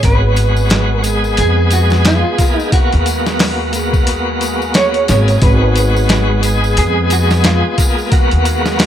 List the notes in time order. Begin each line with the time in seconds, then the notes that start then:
0.00 G#1 G#3 B3 G#4, kick, closed hi-hat, tambourine
0.05 F#4 B4
0.36 closed hi-hat, tambourine
0.56 tambourine
0.69 snare, closed hi-hat, tambourine
0.95 A#4
1.02 G#3 B3, closed hi-hat, tambourine
1.09 G#4
1.24 tambourine
1.37 F2 G#4, closed hi-hat, tambourine
1.71 F#4, closed hi-hat, tambourine
1.90 snare, tambourine
2.05 F4, snare, closed hi-hat, tambourine
2.38 A#3 B3 G#4, kick, closed hi-hat, tambourine
2.59 D#4, tambourine
2.70 A#3 B3 F#4, kick, closed hi-hat, tambourine
2.78 F#4
2.92 D#2, closed hi-hat
3.06 closed hi-hat, tambourine
3.26 snare, tambourine
3.39 snare, open hi-hat, tambourine
3.72 A#3 B3, closed hi-hat, tambourine
3.79 F#4
3.93 kick, tambourine
4.07 closed hi-hat, tambourine
4.41 closed hi-hat, tambourine
4.62 tambourine
4.74 C#5, snare, closed hi-hat, tambourine
4.94 closed hi-hat
5.08 G#1 A#3 B3 G#4, snare, closed hi-hat, tambourine
5.28 closed hi-hat, tambourine
5.40 G#1 G#3 B3 B4, kick, closed hi-hat, tambourine
5.48 F#4
5.76 closed hi-hat, tambourine
5.96 tambourine
6.09 snare, closed hi-hat, tambourine
6.41 G#3 B3, closed hi-hat, tambourine
6.48 G#4
6.64 tambourine
6.77 F2 G#4, closed hi-hat, tambourine
7.10 F#4, closed hi-hat, tambourine
7.30 snare, tambourine
7.44 F4, snare, closed hi-hat, tambourine
7.78 A#3 B3, kick, closed hi-hat, tambourine
7.82 G#4
7.98 tambourine
8.10 A#3 B3 F#4, kick, closed hi-hat, tambourine
8.17 F#4
8.31 D#2, closed hi-hat
8.45 closed hi-hat, tambourine
8.66 snare, tambourine
8.79 snare, open hi-hat, tambourine